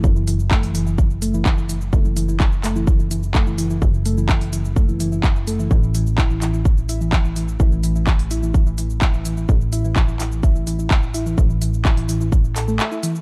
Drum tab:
HH |--o--oo---o---o-|--o---o---o---o-|--o--oo---o---o-|--o---o---o---o-|
SH |xxxxxxxxxxxxxxxx|xxxxxxxxxxxxxxxx|xxxxxxxxxxxxxxxx|xxxxxxxxxxxxxxxx|
CP |----x-------x---|----x-x-----x---|----x-------x---|----x-x-----x---|
BD |o---o---o---o---|o---o---o---o---|o---o---o---o---|o---o---o---o---|

HH |--o--oo---o---o-|--o---o---o---o-|--o--oo---o---o-|
SH |xxxxxxxxxxxxxxxx|xxxxxxxxxxxxxxxx|xxxxxxxxxxxxxxxx|
CP |----x-------x---|----x-x-----x---|----x-----x-x---|
BD |o---o---o---o---|o---o---o---o---|o---o---o-------|